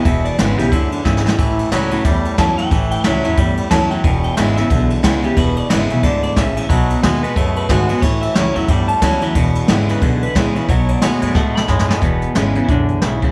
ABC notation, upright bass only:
X:1
M:4/4
L:1/8
Q:"Swing" 1/4=180
K:Emix
V:1 name="Upright bass" clef=bass
E,,,2 G,,, B,,, D,,2 G,,,2 | A,,,2 C,,2 E,,2 F,,2 | A,,,2 C,, E,, =G,,2 F,,2 | E,,,2 G,,,2 B,,,2 C,,2 |
E,,,2 G,,, B,,, D,,2 ^A,,,2 | B,,,2 ^D,,2 F,,2 G,,2 | A,,,2 C,, E,, =G,,2 D,,2 | E,,,2 G,,,2 B,,,2 ^A,,,2 |
B,,,2 ^D,, F,, A,,2 G,,2 | E,,,2 G,,,2 B,,,2 B,,,2 |]